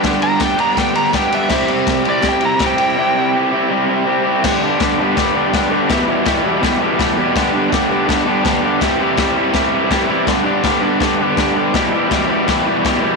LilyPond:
<<
  \new Staff \with { instrumentName = "Electric slide guitar" } { \time 4/4 \key g \major \tempo 4 = 164 r8 bes''8 g''8 bes''8 g''8 bes''8 g''8 e''8~ | e''8 r4 d''8 g''8 bes''8 g''4~ | g''4 r2. | r1 |
r1 | r1 | r1 | r1 |
r1 | }
  \new Staff \with { instrumentName = "Overdriven electric guitar" } { \time 4/4 \key g \major <g, d g b d' g'>8 <g b d' g'>4 <g b d' g'>8 <g, d g b d' g'>8 <g b d' g'>8 <g b d' g'>8 <g b d' g'>8 | <c g c' e' g'>8 <c' e' g'>4 <c' e' g'>8 <c g c' e' g'>8 <c' e' g'>8 <g c' e' g'>8 <c' e' g'>8 | <c g c' e' g'>8 <c' e' g'>4 <c' e' g'>8 <c g c' e' g'>8 <c' e' g'>8 <g c' e' g'>8 <c' e' g'>8 | <g, d g b d' g'>8 <g, d g b d' g'>8 <g, d g b d' g'>8 <g, d g b d' g'>8 <g, d g b d' g'>8 <g, d g b d' g'>8 <g, d g b d' g'>8 <g, d g b d' g'>8 |
<e, b, e g e' g'>8 <e, b, e g e' g'>8 <e, b, e g e' g'>8 <e, b, e g e' g'>8 <e, b, e g e' g'>8 <e, b, e g e' g'>8 <e, b, e g e' g'>8 <e, b, e g e' g'>8 | <g, d g b d' g'>8 <g, d g b d' g'>8 <g, d g b d' g'>8 <g, d g b d' g'>8 <g, d g b d' g'>8 <g, d g b d' g'>8 <g, d g b d' g'>8 <g, d g b d' g'>8 | <c e g e' g'>8 <c e g e' g'>8 <c e g e' g'>8 <c e g e' g'>8 <c e g e' g'>8 <c e g e' g'>8 <c e g e' g'>8 <c e g e' g'>8 | <g, d g b d' g'>8 <g, d g b d' g'>8 <g, d g b d' g'>8 <g, d g b d' g'>8 <g, d g b d' g'>8 <g, d g b d' g'>8 <g, d g b d' g'>8 <g, d g b d' g'>8 |
<e, b, e g e' g'>8 <e, b, e g e' g'>8 <e, b, e g e' g'>8 <e, b, e g e' g'>8 <e, b, e g e' g'>8 <e, b, e g e' g'>8 <e, b, e g e' g'>8 <e, b, e g e' g'>8 | }
  \new DrumStaff \with { instrumentName = "Drums" } \drummode { \time 4/4 <bd cymr sn>8 cymr8 <bd cymr sn>8 cymr8 <bd cymr sn>8 cymr8 <bd cymr sn>8 cymr8 | <cymc bd sn>8 cymr8 <bd cymr sn>8 cymr8 <bd cymr sn>8 cymr8 <bd cymr sn>8 cymr8 | r4 r4 r4 r4 | <cymc bd sn>4 <cymc bd sn>4 <cymc bd sn>4 <cymc bd sn>4 |
<cymc bd sn>4 <cymc bd sn>4 <cymc bd sn>4 <cymc bd sn>4 | <cymc bd sn>4 <cymc bd sn>4 <cymc bd sn>4 <cymc bd sn>4 | <cymc bd sn>4 <cymc bd sn>4 <cymc bd sn>4 <cymc bd sn>4 | <cymc bd sn>4 <cymc bd sn>4 <cymc bd sn>4 <cymc bd sn>4 |
<cymc bd sn>4 <cymc bd sn>4 <cymc bd sn>4 <cymc bd sn>4 | }
>>